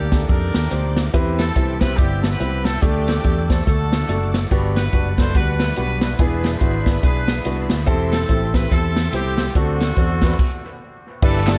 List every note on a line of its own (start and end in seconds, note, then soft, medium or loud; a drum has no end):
0.00 0.23 D2 medium
0.00 0.68 A#3 medium
0.00 1.12 A#3 medium
0.00 0.28 D4 medium
0.00 0.28 G4 medium
0.00 1.12 D5 medium
0.00 1.11 G5 medium
0.00 1.12 D6 medium
0.11 0.22 D4 medium
0.11 0.22 D#4 medium
0.11 0.22 G4 medium
0.11 0.22 A4 medium
0.11 kick medium
0.11 snare medium
0.11 closed hi-hat medium
0.27 0.51 F2 medium
0.27 0.58 D4 medium
0.27 1.09 D4 medium
0.27 0.58 D#4 medium
0.27 0.58 G4 medium
0.27 1.10 G4 medium
0.27 0.58 A4 medium
0.27 0.96 A#4 medium
0.27 kick loud
0.27 closed hi-hat medium
0.54 0.69 D#2 medium
0.54 snare loud
0.54 closed hi-hat medium
0.71 1.07 D2 medium
0.71 1.00 D4 medium
0.71 1.00 D#4 medium
0.71 1.00 G4 medium
0.71 1.00 C5 medium
0.71 closed hi-hat medium
0.97 snare loud
0.97 closed hi-hat medium
1.13 1.50 E2 medium
1.13 1.77 E3 medium
1.13 1.42 C4 loud
1.13 1.43 E4 loud
1.13 1.43 G4 medium
1.13 2.81 G4 medium
1.13 1.43 B4 loud
1.13 2.80 E5 medium
1.13 3.64 G5 medium
1.13 kick loud
1.13 closed hi-hat medium
1.38 1.97 C4 medium
1.38 1.78 A4 medium
1.38 snare loud
1.38 closed hi-hat medium
1.56 2.00 C2 medium
1.56 1.71 C4 medium
1.56 1.71 E4 medium
1.56 1.71 G4 medium
1.56 1.71 B4 medium
1.56 kick medium
1.56 closed hi-hat medium
1.79 1.91 C4 medium
1.79 1.92 E4 medium
1.79 1.92 G4 medium
1.79 1.97 B4 medium
1.79 1.91 C5 medium
1.79 kick medium
1.79 snare loud
1.79 closed hi-hat medium
1.96 2.34 G1 medium
1.96 2.78 B3 medium
1.96 2.78 C4 medium
1.96 2.27 C4 medium
1.96 2.27 E4 medium
1.96 2.22 G4 medium
1.96 2.27 G4 medium
1.96 2.27 D5 medium
1.96 kick loud
1.96 closed hi-hat medium
2.21 2.31 A4 medium
2.21 snare loud
2.21 closed hi-hat medium
2.30 2.79 G4 medium
2.30 2.62 B4 medium
2.40 2.76 C2 medium
2.40 2.69 C4 medium
2.40 2.69 E4 medium
2.40 2.69 G4 medium
2.40 2.69 B4 medium
2.40 closed hi-hat medium
2.63 2.81 A4 medium
2.63 snare loud
2.63 closed hi-hat medium
2.80 3.18 D2 medium
2.80 3.45 D3 medium
2.80 3.11 A3 medium
2.80 3.63 D4 medium
2.80 3.11 D4 medium
2.80 3.48 G4 medium
2.80 3.11 G4 medium
2.80 4.49 A4 medium
2.80 3.11 A4 medium
2.80 4.49 D5 medium
2.80 4.49 D6 medium
2.80 kick loud
2.80 closed hi-hat medium
3.08 snare loud
3.08 closed hi-hat medium
3.24 3.60 E2 medium
3.24 3.40 A3 medium
3.24 3.40 D4 medium
3.24 3.40 G4 medium
3.24 3.40 A4 medium
3.24 kick medium
3.24 closed hi-hat medium
3.48 3.60 A3 medium
3.48 3.60 D4 medium
3.48 3.60 G4 medium
3.48 3.64 A4 medium
3.48 3.60 C5 medium
3.48 kick medium
3.48 snare medium
3.48 closed hi-hat medium
3.66 4.03 D2 medium
3.66 4.29 D3 medium
3.66 3.95 A3 medium
3.66 3.95 D4 medium
3.66 4.47 D4 medium
3.66 3.95 F#4 medium
3.66 4.47 F#4 medium
3.66 4.29 A4 medium
3.66 3.95 A4 medium
3.66 6.16 F#5 medium
3.66 kick loud
3.66 closed hi-hat medium
3.93 snare loud
3.93 closed hi-hat medium
4.08 4.44 F#1 medium
4.08 4.38 A3 medium
4.08 4.38 D4 medium
4.08 4.38 F#4 medium
4.08 4.38 A4 medium
4.08 closed hi-hat medium
4.34 snare loud
4.34 closed hi-hat medium
4.50 4.87 G1 medium
4.50 5.14 G2 medium
4.50 6.17 G3 medium
4.50 4.80 B3 loud
4.50 4.80 D4 medium
4.50 4.80 F#4 loud
4.50 4.80 G4 loud
4.50 7.83 D5 medium
4.50 7.83 B5 medium
4.50 kick loud
4.50 closed hi-hat medium
4.76 5.35 D4 medium
4.76 5.34 F#4 medium
4.76 5.15 B4 medium
4.76 snare loud
4.76 closed hi-hat medium
4.93 5.37 F#1 medium
4.93 5.08 B3 medium
4.93 5.08 D4 medium
4.93 5.09 F#4 medium
4.93 5.09 G4 medium
4.93 kick medium
4.93 closed hi-hat medium
5.18 5.29 B3 medium
5.18 5.29 D4 medium
5.18 5.29 F#4 medium
5.18 5.29 A4 medium
5.18 5.35 C5 medium
5.18 kick medium
5.18 snare medium
5.18 closed hi-hat medium
5.35 5.71 D2 medium
5.35 5.64 B3 medium
5.35 5.64 D4 medium
5.35 5.77 D4 medium
5.35 5.64 F#4 medium
5.35 5.77 F#4 medium
5.35 5.64 G4 medium
5.35 5.78 B4 loud
5.35 kick loud
5.35 closed hi-hat medium
5.60 snare loud
5.60 closed hi-hat medium
5.76 6.13 B1 medium
5.76 6.06 B3 medium
5.76 6.06 D4 medium
5.76 6.17 D4 medium
5.76 6.06 F#4 medium
5.76 6.17 F#4 medium
5.76 6.06 G4 medium
5.76 6.17 B4 medium
5.76 closed hi-hat medium
6.01 snare loud
6.01 closed hi-hat medium
6.19 6.55 E1 medium
6.19 6.82 E3 medium
6.19 6.48 B3 medium
6.19 6.48 D4 medium
6.19 7.00 D4 medium
6.19 6.48 E4 medium
6.19 7.86 G#4 medium
6.19 6.48 G#4 loud
6.19 6.52 G#4 medium
6.19 6.87 B4 medium
6.19 7.84 E5 medium
6.19 kick loud
6.19 closed hi-hat medium
6.44 snare loud
6.44 closed hi-hat medium
6.53 7.03 G#4 medium
6.53 6.87 C5 medium
6.60 6.97 G#1 medium
6.60 6.76 B3 medium
6.60 6.76 D4 medium
6.60 6.76 E4 medium
6.60 6.76 F#4 medium
6.60 kick medium
6.60 closed hi-hat medium
6.86 6.96 B3 medium
6.86 6.96 D4 medium
6.86 6.96 E4 medium
6.86 6.96 B4 medium
6.86 7.03 B4 medium
6.86 kick medium
6.86 snare medium
6.86 closed hi-hat medium
7.03 7.39 B1 medium
7.03 7.32 B3 medium
7.03 7.32 D4 medium
7.03 7.84 D4 medium
7.03 7.32 E4 medium
7.03 7.32 G#4 medium
7.03 7.84 G#4 medium
7.03 7.67 B4 medium
7.03 kick loud
7.03 closed hi-hat medium
7.28 snare loud
7.28 closed hi-hat medium
7.45 7.67 C2 medium
7.45 7.74 B3 medium
7.45 7.74 D4 medium
7.45 7.74 E4 medium
7.45 7.74 F#4 medium
7.45 closed hi-hat medium
7.70 7.85 D2 medium
7.70 snare loud
7.70 closed hi-hat medium
7.85 8.23 E1 medium
7.85 8.50 E3 medium
7.85 8.16 C4 loud
7.85 8.16 E4 medium
7.85 8.16 G4 medium
7.85 9.53 A4 medium
7.85 8.16 A4 loud
7.85 9.53 E5 medium
7.85 9.53 G5 medium
7.85 10.36 C6 medium
7.85 kick loud
7.85 closed hi-hat medium
8.12 8.70 C4 medium
8.12 8.51 A4 loud
8.12 snare loud
8.12 closed hi-hat medium
8.29 8.65 A1 medium
8.29 8.44 C4 medium
8.29 8.44 E4 medium
8.29 8.45 G4 medium
8.29 8.45 A4 medium
8.29 kick medium
8.29 closed hi-hat medium
8.53 8.64 C4 medium
8.53 8.64 E4 medium
8.53 8.65 G4 medium
8.53 8.71 B4 medium
8.53 8.65 B4 medium
8.53 kick medium
8.53 snare medium
8.53 closed hi-hat medium
8.71 9.07 E2 medium
8.71 9.12 C4 medium
8.71 9.00 C4 medium
8.71 9.00 E4 medium
8.71 9.00 G4 medium
8.71 9.13 A4 loud
8.71 9.01 A4 medium
8.71 kick loud
8.71 closed hi-hat medium
8.96 snare loud
8.96 closed hi-hat medium
9.13 9.49 C2 medium
9.13 9.52 C4 medium
9.13 9.42 C4 medium
9.13 9.42 E4 medium
9.13 9.42 G4 medium
9.13 9.56 G4 medium
9.13 9.42 C5 medium
9.13 closed hi-hat medium
9.38 snare loud
9.38 closed hi-hat medium
9.55 9.91 D2 medium
9.55 10.19 D3 medium
9.55 10.77 A3 medium
9.55 10.77 C4 medium
9.55 9.84 C4 medium
9.55 9.85 D4 medium
9.55 10.77 F#4 medium
9.55 9.84 F#4 medium
9.55 10.38 A4 medium
9.55 9.84 A4 medium
9.55 10.38 D5 medium
9.55 10.38 F#5 medium
9.55 kick loud
9.55 closed hi-hat medium
9.80 snare loud
9.80 closed hi-hat medium
9.96 10.33 E2 medium
9.96 10.13 C4 medium
9.96 10.13 D4 medium
9.96 10.13 F#4 medium
9.96 10.13 C5 medium
9.96 kick medium
9.96 closed hi-hat medium
10.21 10.33 C4 medium
10.21 10.32 D4 medium
10.21 10.33 F#4 medium
10.21 10.33 B4 medium
10.21 kick medium
10.21 snare medium
10.21 closed hi-hat medium
10.39 kick medium
10.39 crash medium
11.22 11.58 G1 loud
11.22 11.58 G2 medium
11.22 11.58 D4 medium
11.22 11.38 D4 medium
11.22 11.58 E4 medium
11.22 11.38 E4 medium
11.22 11.38 G4 medium
11.22 11.58 A4 medium
11.22 11.38 B4 loud
11.22 11.58 B4 medium
11.22 11.58 E5 medium
11.22 11.58 G5 medium
11.22 11.58 D6 medium
11.22 kick loud
11.22 crash medium
11.47 11.57 D4 medium
11.47 11.58 E4 medium
11.47 11.58 G4 medium
11.47 11.58 D5 medium
11.47 snare loud
11.47 clap medium
11.47 closed hi-hat medium